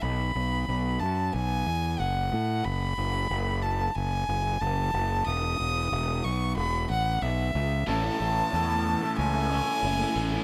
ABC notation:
X:1
M:4/4
L:1/16
Q:1/4=92
K:Alyd
V:1 name="Violin"
b6 a2 g4 f4 | b6 a2 g4 a4 | d'6 c'2 b2 f2 e4 | a8 g8 |]
V:2 name="Overdriven electric guitar"
z16 | z16 | z16 | [A,,E,A,CEA] [A,CEA] [A,CEA]2 [A,,E,A,CEA]3 [A,CEA]2 [A,CEA] [A,CEA]2 [A,,E,A,CEA] [A,CEA] [A,CEA] [A,CEA] |]
V:3 name="Fingered electric bass" clef=bass
B,,,2 B,,,2 B,,,2 F,,2 B,,,2 E,,2 F,,,2 A,,2 | F,,,2 F,,,2 F,,,4 F,,,2 F,,,2 F,,,2 F,,,2 | E,,,2 E,,,2 E,,,2 B,,,2 E,,,2 A,,,2 B,,,2 C,,2 | A,,,2 A,,,2 E,,4 C,,4 F,,,2 A,,,2 |]